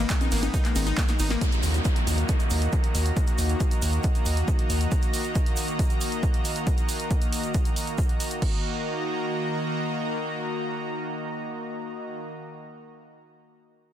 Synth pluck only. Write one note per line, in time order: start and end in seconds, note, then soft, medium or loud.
0.10 0.15 D#4 medium
0.21 0.26 D#4 loud
0.32 0.37 A#3 loud
0.43 0.48 D#4 medium
0.54 0.59 D#4 loud
0.65 0.70 A#3 loud
0.76 0.81 D#4 medium
0.87 0.92 D#4 loud
0.98 1.03 A#3 loud
1.09 1.13 D#4 medium
1.20 1.24 D#4 loud
1.31 1.35 A#3 loud